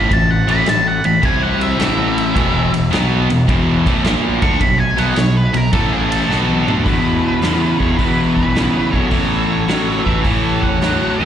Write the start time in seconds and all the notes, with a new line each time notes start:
Already playing: A3 B5
0.10 A1 A2 E3 A5, kick, ride
0.31 F#5
0.48 A1 A2 E3 A3 B5, ride
0.66 A1 A2 E3 A5, snare, ride
0.88 F#5
1.04 A1 A2 E3 B5, ride
1.22 C2 C3 G3 C4 G#5, kick, ride
1.43 F#5
1.61 E5, ride
1.79 A1 A2 E3 A3, snare, ride
2.18 ride
2.35 E1 E2 B2 E3, kick, ride
2.72 E1 E2 B2, ride
2.91 B1 B2 F#3 B3, snare, ride
3.29 E1 E2 B2, ride
3.47 E1 E2 B2 E3, kick, ride
3.86 A1 A2 E3 A3, kick, ride
4.04 A#1 A#2 F3 A#3, snare, ride
4.42 D2 D3 A3 D4 C#6, kick, ride
4.60 B1 B2 F#3 B5, kick, ride
4.79 G#5
4.97 B1 B2 F#3 B3 F#5, ride
5.16 B1 B2 F#3 C#5, snare, ride
5.37 B4
5.54 B1 B2 F#3 A#4, ride
5.73 A1 A2 E3 A3 A4, kick, ride
5.92 G#4
6.10 A4, ride
6.29 B1 B2 F#3 B3, snare
6.49 high tom
6.68 D2 D3 A3 D4, mid tom
6.77 floor tom
6.84 E2 B2 E4 B4, kick, open hi-hat
7.33 E2
7.42 E2 C#3, snare, open hi-hat
7.78 E2 B2 G#4 C#5, kick
7.97 E2 B2 E3 E4 B4, kick, open hi-hat
8.35 E4 B4, kick
8.46 B1
8.55 E2 C#3, snare, open hi-hat
8.91 B1 E2 B2 A4 C#5, kick
9.10 A1 A2 E3, kick, open hi-hat
9.46 A4 C#5
9.59 A1
9.68 A2 F#3, snare, open hi-hat
10.03 A1 A2 E3 B4 E5, kick
10.22 A2 E3 A4 C#5, kick, open hi-hat
10.61 C#5 F#5, kick
10.73 E2
10.81 A2 F#3, snare, open hi-hat
11.16 A2 E3 B4 E5
11.20 E2